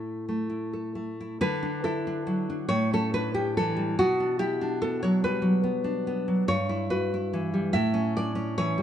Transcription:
nylon-string guitar
Already playing: A2 A3 E4 A4 C#5
0.29 A3
0.50 E4
0.73 A4
0.95 A3
1.21 E4
1.41 D3 B4
1.63 D4
1.84 E4 A4
2.07 D4
2.27 F#3
2.50 D4
2.69 A2 C#5
2.93 C#4 A4
3.14 D4 B4
3.34 C#4 G4
3.57 E3 A4
3.77 G3
3.99 B2 F#4
4.20 D4
4.39 E4 G4
4.61 D4
4.82 B3 A4
5.03 F#3 C#5
5.24 G3 B4
5.42 F#3
5.64 B3
5.84 D4
6.07 B3
6.28 F#3
6.48 G2 C#5
6.69 E4
6.90 F#4 B4
7.14 E4
7.33 E3
7.54 G3
7.73 A2 E5
7.94 C#4
8.17 D4 D5
8.35 C#4
8.58 E3 C#5
8.78 G3

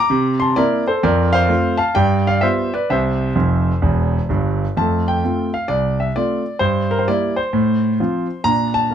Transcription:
grand piano
Already playing: A#5 D6
0.10 C3
0.40 A5 C6
0.56 A#3 C4 E4 A#4 D5
0.87 A4 C5
1.03 F2 A#4 D5
1.33 C5 F5
1.48 A3 C4 F4
1.77 F5 A5
1.95 G2 D5 G5
2.27 D5 F5
2.41 G3 B3 F4 C5 E5
2.74 B4 D5
2.90 C2 C3 C5 E5
3.35 F1 F2
3.82 E1 E2
4.29 G1 G2
4.77 F2 A3 A5
5.08 G5
5.24 A3 C4 F4
5.54 F5
5.68 C2 D5
6.00 E5
6.16 A3 C4 F4 D5
6.59 G2 C5
6.91 A#4
6.99 C5
7.08 G3 A#3 E4 D5
7.36 C5
7.53 A2
8.00 F3 C4 F4
8.44 A#2 D4 A#5
8.74 A5
8.91 A#3

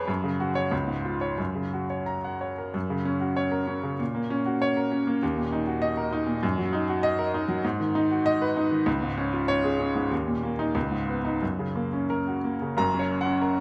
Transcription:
grand piano
Already playing: F2 F3 G#4 B4 C#5 G#5 B5
0.08 F#2
0.24 C#3
0.40 F#4
0.55 C#5
0.71 C#2
0.88 G#2
1.05 F4
1.21 C#5
1.38 F#2
1.55 C#3
1.73 F#4
1.90 C#5
2.06 A#5
2.24 F#5
2.41 C#5
2.58 A#4
2.74 F#2
2.90 C#3
3.05 C#4
3.20 F#4
3.36 C#5
3.51 A#4
3.67 C#4
3.83 C#3
3.99 A#2
4.15 A#3
4.30 C#4
4.46 F#4
4.62 C#5
4.77 A#4
4.92 C#4
5.07 A#3
5.23 D#2
5.37 A#2
5.52 D#4
5.67 F#4
5.82 D#5
5.97 A#4
6.13 D#4
6.27 A#2
6.43 F#2
6.58 F#3
6.73 D#4
6.88 F#4
7.03 D#5
7.19 A#4
7.34 D#4
7.48 F#3
7.65 G#2
7.80 D#3
7.95 D#4
8.11 F#4
8.26 D#5
8.42 B4
8.57 D#4
8.71 D#3
8.86 C#2
9.02 G#2
9.17 C#4
9.33 F4
9.48 C#5
9.64 G#4
9.79 C#4
9.95 G#2
10.11 D#2
10.27 A#2
10.43 A#3
10.59 D#4
10.75 C#2
10.91 G#2
11.08 B3
11.25 D#4
11.42 F#2
11.59 C#3
11.76 A#3
11.93 C#4
12.10 A#4
12.27 F#4
12.44 A#3
12.62 C#3
12.77 F#1 F#2 A#5
12.94 C#4
12.99 C#5
13.21 F#5
13.26 C#4
13.42 A#4

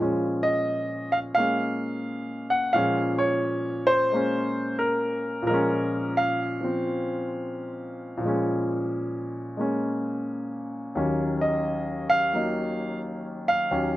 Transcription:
grand piano
Already playing: A#2
0.00 F3 G#3 C#4
0.43 D#5
1.12 F5
1.35 G#3 A#3 F5
1.39 C#4
2.50 F#5
2.73 A#2 F3 G#3 C#4 F5
3.18 C#5
3.87 C5
4.12 G#3 A#3 C#4
4.79 A#4
5.42 A#2
5.46 F3 G#3 A#4
5.54 C#4
6.17 F5
6.61 F3 C4
8.17 A#2 F3
8.25 G#3 C#4
9.57 G#3 A#3 C#4
10.95 D#2 D#3 F#3 C#4
11.41 D#5
12.10 F5
12.34 F#3 A#3 D#4
13.48 F5
13.71 D#2 D#3 F#3 C#4

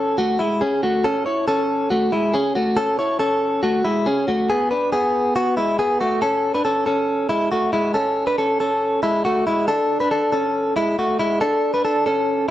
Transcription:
clean electric guitar
Already playing: C#4 A4
0.18 A3 F#4
0.39 G#3 E4
0.61 C#4 G#4
0.83 A3 F#4
1.04 C#4 A4
1.26 E4 C#5
1.48 C#4 A4
1.90 A3 F#4
2.12 G#3 E4
2.34 C#4 G#4
2.55 A3 F#4
2.77 C#4 A4
2.99 E4 C#5
3.19 C#4 A4
3.63 A3 F#4
3.85 G#3 E4
4.06 C#4 G#4
4.28 A3 F#4
4.50 B3 G#4
4.71 D4 B4
4.92 B3 G#4
5.36 B3 F#4
5.57 G#3 E4
5.79 B3 G#4
6.01 A3 F#4
6.22 C#4 A4
6.54 D4 B4
6.65 C#4 A4
6.86 C#4 A4
7.29 G#3 E4
7.52 A3 F#4
7.73 G#3 E4
7.94 C#4 A4
8.27 D4 B4
8.38 C#4 A4
8.60 C#4 A4
9.03 G#3 E4
9.25 A3 F#4
9.47 G#3 E4
9.68 D4 A4
10.00 D4 B4
10.11 D4 A4
10.32 C#4 A4
10.76 G#3 E4
10.99 A3 F#4
11.19 G#3 E4
11.41 D4 A4
11.74 D4 B4
11.85 D4 A4
12.06 C#4 A4

